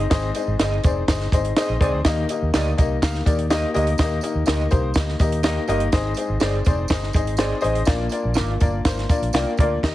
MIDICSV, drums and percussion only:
0, 0, Header, 1, 2, 480
1, 0, Start_track
1, 0, Key_signature, -3, "major"
1, 0, Tempo, 486224
1, 107, Time_signature, 4, 2, 24, 8
1, 9821, End_track
2, 0, Start_track
2, 0, Title_t, "Drums"
2, 107, Note_on_c, 9, 42, 101
2, 107, Note_on_c, 9, 54, 81
2, 108, Note_on_c, 9, 38, 121
2, 109, Note_on_c, 9, 36, 99
2, 206, Note_off_c, 9, 42, 0
2, 206, Note_off_c, 9, 54, 0
2, 207, Note_off_c, 9, 38, 0
2, 208, Note_off_c, 9, 36, 0
2, 342, Note_on_c, 9, 42, 82
2, 342, Note_on_c, 9, 54, 56
2, 440, Note_off_c, 9, 54, 0
2, 441, Note_off_c, 9, 42, 0
2, 587, Note_on_c, 9, 38, 98
2, 588, Note_on_c, 9, 42, 86
2, 590, Note_on_c, 9, 54, 93
2, 686, Note_off_c, 9, 38, 0
2, 686, Note_off_c, 9, 42, 0
2, 689, Note_off_c, 9, 54, 0
2, 825, Note_on_c, 9, 42, 78
2, 834, Note_on_c, 9, 36, 105
2, 836, Note_on_c, 9, 54, 57
2, 923, Note_off_c, 9, 42, 0
2, 932, Note_off_c, 9, 36, 0
2, 934, Note_off_c, 9, 54, 0
2, 1066, Note_on_c, 9, 36, 86
2, 1068, Note_on_c, 9, 42, 77
2, 1069, Note_on_c, 9, 38, 118
2, 1075, Note_on_c, 9, 54, 96
2, 1165, Note_off_c, 9, 36, 0
2, 1166, Note_off_c, 9, 42, 0
2, 1168, Note_off_c, 9, 38, 0
2, 1173, Note_off_c, 9, 54, 0
2, 1188, Note_on_c, 9, 38, 38
2, 1286, Note_off_c, 9, 38, 0
2, 1305, Note_on_c, 9, 36, 106
2, 1313, Note_on_c, 9, 42, 77
2, 1324, Note_on_c, 9, 54, 61
2, 1404, Note_off_c, 9, 36, 0
2, 1412, Note_off_c, 9, 42, 0
2, 1423, Note_off_c, 9, 54, 0
2, 1428, Note_on_c, 9, 42, 53
2, 1527, Note_off_c, 9, 42, 0
2, 1545, Note_on_c, 9, 38, 113
2, 1545, Note_on_c, 9, 42, 98
2, 1559, Note_on_c, 9, 54, 85
2, 1644, Note_off_c, 9, 38, 0
2, 1644, Note_off_c, 9, 42, 0
2, 1657, Note_off_c, 9, 54, 0
2, 1784, Note_on_c, 9, 36, 113
2, 1796, Note_on_c, 9, 42, 63
2, 1801, Note_on_c, 9, 54, 55
2, 1883, Note_off_c, 9, 36, 0
2, 1894, Note_off_c, 9, 42, 0
2, 1899, Note_off_c, 9, 54, 0
2, 2021, Note_on_c, 9, 38, 119
2, 2021, Note_on_c, 9, 42, 83
2, 2025, Note_on_c, 9, 36, 97
2, 2032, Note_on_c, 9, 54, 88
2, 2120, Note_off_c, 9, 38, 0
2, 2120, Note_off_c, 9, 42, 0
2, 2124, Note_off_c, 9, 36, 0
2, 2131, Note_off_c, 9, 54, 0
2, 2260, Note_on_c, 9, 54, 56
2, 2261, Note_on_c, 9, 42, 87
2, 2359, Note_off_c, 9, 54, 0
2, 2360, Note_off_c, 9, 42, 0
2, 2505, Note_on_c, 9, 38, 102
2, 2505, Note_on_c, 9, 42, 88
2, 2506, Note_on_c, 9, 54, 80
2, 2604, Note_off_c, 9, 38, 0
2, 2604, Note_off_c, 9, 42, 0
2, 2604, Note_off_c, 9, 54, 0
2, 2748, Note_on_c, 9, 42, 78
2, 2750, Note_on_c, 9, 36, 87
2, 2759, Note_on_c, 9, 54, 56
2, 2846, Note_off_c, 9, 42, 0
2, 2849, Note_off_c, 9, 36, 0
2, 2857, Note_off_c, 9, 54, 0
2, 2983, Note_on_c, 9, 36, 83
2, 2984, Note_on_c, 9, 54, 85
2, 2988, Note_on_c, 9, 42, 76
2, 2990, Note_on_c, 9, 38, 112
2, 3082, Note_off_c, 9, 36, 0
2, 3083, Note_off_c, 9, 54, 0
2, 3087, Note_off_c, 9, 42, 0
2, 3088, Note_off_c, 9, 38, 0
2, 3106, Note_on_c, 9, 38, 40
2, 3205, Note_off_c, 9, 38, 0
2, 3221, Note_on_c, 9, 36, 100
2, 3222, Note_on_c, 9, 54, 60
2, 3230, Note_on_c, 9, 42, 76
2, 3320, Note_off_c, 9, 36, 0
2, 3320, Note_off_c, 9, 54, 0
2, 3328, Note_off_c, 9, 42, 0
2, 3343, Note_on_c, 9, 42, 54
2, 3441, Note_off_c, 9, 42, 0
2, 3459, Note_on_c, 9, 54, 90
2, 3466, Note_on_c, 9, 38, 113
2, 3466, Note_on_c, 9, 42, 94
2, 3557, Note_off_c, 9, 54, 0
2, 3564, Note_off_c, 9, 38, 0
2, 3564, Note_off_c, 9, 42, 0
2, 3696, Note_on_c, 9, 54, 57
2, 3715, Note_on_c, 9, 42, 60
2, 3795, Note_off_c, 9, 54, 0
2, 3814, Note_off_c, 9, 42, 0
2, 3820, Note_on_c, 9, 42, 60
2, 3919, Note_off_c, 9, 42, 0
2, 3928, Note_on_c, 9, 54, 87
2, 3940, Note_on_c, 9, 36, 99
2, 3941, Note_on_c, 9, 38, 114
2, 3941, Note_on_c, 9, 42, 87
2, 4027, Note_off_c, 9, 54, 0
2, 4038, Note_off_c, 9, 36, 0
2, 4040, Note_off_c, 9, 38, 0
2, 4040, Note_off_c, 9, 42, 0
2, 4157, Note_on_c, 9, 54, 59
2, 4183, Note_on_c, 9, 42, 85
2, 4256, Note_off_c, 9, 54, 0
2, 4282, Note_off_c, 9, 42, 0
2, 4400, Note_on_c, 9, 54, 78
2, 4421, Note_on_c, 9, 38, 110
2, 4421, Note_on_c, 9, 42, 93
2, 4498, Note_off_c, 9, 54, 0
2, 4520, Note_off_c, 9, 38, 0
2, 4520, Note_off_c, 9, 42, 0
2, 4646, Note_on_c, 9, 54, 52
2, 4655, Note_on_c, 9, 42, 74
2, 4663, Note_on_c, 9, 36, 100
2, 4745, Note_off_c, 9, 54, 0
2, 4754, Note_off_c, 9, 42, 0
2, 4762, Note_off_c, 9, 36, 0
2, 4875, Note_on_c, 9, 54, 87
2, 4892, Note_on_c, 9, 42, 84
2, 4893, Note_on_c, 9, 38, 121
2, 4894, Note_on_c, 9, 36, 88
2, 4974, Note_off_c, 9, 54, 0
2, 4991, Note_off_c, 9, 42, 0
2, 4992, Note_off_c, 9, 38, 0
2, 4993, Note_off_c, 9, 36, 0
2, 5020, Note_on_c, 9, 38, 43
2, 5118, Note_off_c, 9, 38, 0
2, 5127, Note_on_c, 9, 54, 60
2, 5132, Note_on_c, 9, 36, 106
2, 5142, Note_on_c, 9, 42, 79
2, 5226, Note_off_c, 9, 54, 0
2, 5231, Note_off_c, 9, 36, 0
2, 5241, Note_off_c, 9, 42, 0
2, 5255, Note_on_c, 9, 42, 58
2, 5354, Note_off_c, 9, 42, 0
2, 5362, Note_on_c, 9, 54, 92
2, 5371, Note_on_c, 9, 38, 124
2, 5371, Note_on_c, 9, 42, 94
2, 5461, Note_off_c, 9, 54, 0
2, 5469, Note_off_c, 9, 38, 0
2, 5469, Note_off_c, 9, 42, 0
2, 5603, Note_on_c, 9, 54, 56
2, 5622, Note_on_c, 9, 42, 68
2, 5702, Note_off_c, 9, 54, 0
2, 5721, Note_off_c, 9, 42, 0
2, 5728, Note_on_c, 9, 42, 56
2, 5827, Note_off_c, 9, 42, 0
2, 5846, Note_on_c, 9, 54, 78
2, 5851, Note_on_c, 9, 38, 119
2, 5851, Note_on_c, 9, 42, 87
2, 5853, Note_on_c, 9, 36, 100
2, 5945, Note_off_c, 9, 54, 0
2, 5950, Note_off_c, 9, 38, 0
2, 5950, Note_off_c, 9, 42, 0
2, 5951, Note_off_c, 9, 36, 0
2, 6066, Note_on_c, 9, 54, 59
2, 6091, Note_on_c, 9, 42, 93
2, 6165, Note_off_c, 9, 54, 0
2, 6189, Note_off_c, 9, 42, 0
2, 6318, Note_on_c, 9, 54, 89
2, 6331, Note_on_c, 9, 38, 104
2, 6332, Note_on_c, 9, 42, 82
2, 6417, Note_off_c, 9, 54, 0
2, 6430, Note_off_c, 9, 38, 0
2, 6430, Note_off_c, 9, 42, 0
2, 6561, Note_on_c, 9, 54, 51
2, 6575, Note_on_c, 9, 42, 78
2, 6580, Note_on_c, 9, 36, 98
2, 6660, Note_off_c, 9, 54, 0
2, 6674, Note_off_c, 9, 42, 0
2, 6679, Note_off_c, 9, 36, 0
2, 6793, Note_on_c, 9, 54, 96
2, 6812, Note_on_c, 9, 36, 92
2, 6816, Note_on_c, 9, 42, 86
2, 6817, Note_on_c, 9, 38, 118
2, 6892, Note_off_c, 9, 54, 0
2, 6911, Note_off_c, 9, 36, 0
2, 6915, Note_off_c, 9, 42, 0
2, 6916, Note_off_c, 9, 38, 0
2, 6941, Note_on_c, 9, 38, 39
2, 7039, Note_off_c, 9, 38, 0
2, 7041, Note_on_c, 9, 54, 67
2, 7053, Note_on_c, 9, 36, 102
2, 7068, Note_on_c, 9, 42, 75
2, 7139, Note_off_c, 9, 54, 0
2, 7152, Note_off_c, 9, 36, 0
2, 7167, Note_off_c, 9, 42, 0
2, 7179, Note_on_c, 9, 42, 55
2, 7274, Note_on_c, 9, 54, 93
2, 7278, Note_off_c, 9, 42, 0
2, 7292, Note_on_c, 9, 38, 119
2, 7292, Note_on_c, 9, 42, 103
2, 7373, Note_off_c, 9, 54, 0
2, 7391, Note_off_c, 9, 38, 0
2, 7391, Note_off_c, 9, 42, 0
2, 7510, Note_on_c, 9, 54, 55
2, 7545, Note_on_c, 9, 42, 60
2, 7609, Note_off_c, 9, 54, 0
2, 7644, Note_off_c, 9, 42, 0
2, 7654, Note_on_c, 9, 42, 58
2, 7753, Note_off_c, 9, 42, 0
2, 7753, Note_on_c, 9, 54, 95
2, 7773, Note_on_c, 9, 38, 115
2, 7773, Note_on_c, 9, 42, 101
2, 7774, Note_on_c, 9, 36, 106
2, 7851, Note_off_c, 9, 54, 0
2, 7871, Note_off_c, 9, 42, 0
2, 7872, Note_off_c, 9, 38, 0
2, 7873, Note_off_c, 9, 36, 0
2, 7990, Note_on_c, 9, 54, 57
2, 8015, Note_on_c, 9, 42, 83
2, 8089, Note_off_c, 9, 54, 0
2, 8114, Note_off_c, 9, 42, 0
2, 8234, Note_on_c, 9, 54, 87
2, 8259, Note_on_c, 9, 38, 107
2, 8259, Note_on_c, 9, 42, 82
2, 8333, Note_off_c, 9, 54, 0
2, 8358, Note_off_c, 9, 38, 0
2, 8358, Note_off_c, 9, 42, 0
2, 8493, Note_on_c, 9, 54, 51
2, 8495, Note_on_c, 9, 42, 79
2, 8503, Note_on_c, 9, 36, 103
2, 8592, Note_off_c, 9, 54, 0
2, 8594, Note_off_c, 9, 42, 0
2, 8602, Note_off_c, 9, 36, 0
2, 8736, Note_on_c, 9, 54, 91
2, 8737, Note_on_c, 9, 42, 84
2, 8738, Note_on_c, 9, 36, 86
2, 8738, Note_on_c, 9, 38, 123
2, 8835, Note_off_c, 9, 42, 0
2, 8835, Note_off_c, 9, 54, 0
2, 8837, Note_off_c, 9, 36, 0
2, 8837, Note_off_c, 9, 38, 0
2, 8864, Note_on_c, 9, 38, 41
2, 8963, Note_off_c, 9, 38, 0
2, 8978, Note_on_c, 9, 54, 66
2, 8979, Note_on_c, 9, 36, 114
2, 8990, Note_on_c, 9, 42, 72
2, 9077, Note_off_c, 9, 36, 0
2, 9077, Note_off_c, 9, 54, 0
2, 9089, Note_off_c, 9, 42, 0
2, 9109, Note_on_c, 9, 42, 57
2, 9207, Note_off_c, 9, 42, 0
2, 9210, Note_on_c, 9, 54, 90
2, 9227, Note_on_c, 9, 38, 125
2, 9227, Note_on_c, 9, 42, 91
2, 9308, Note_off_c, 9, 54, 0
2, 9326, Note_off_c, 9, 38, 0
2, 9326, Note_off_c, 9, 42, 0
2, 9452, Note_on_c, 9, 54, 52
2, 9464, Note_on_c, 9, 36, 104
2, 9481, Note_on_c, 9, 42, 68
2, 9550, Note_off_c, 9, 54, 0
2, 9563, Note_off_c, 9, 36, 0
2, 9579, Note_off_c, 9, 42, 0
2, 9706, Note_on_c, 9, 36, 83
2, 9710, Note_on_c, 9, 49, 73
2, 9712, Note_on_c, 9, 38, 99
2, 9805, Note_off_c, 9, 36, 0
2, 9809, Note_off_c, 9, 49, 0
2, 9810, Note_off_c, 9, 38, 0
2, 9821, End_track
0, 0, End_of_file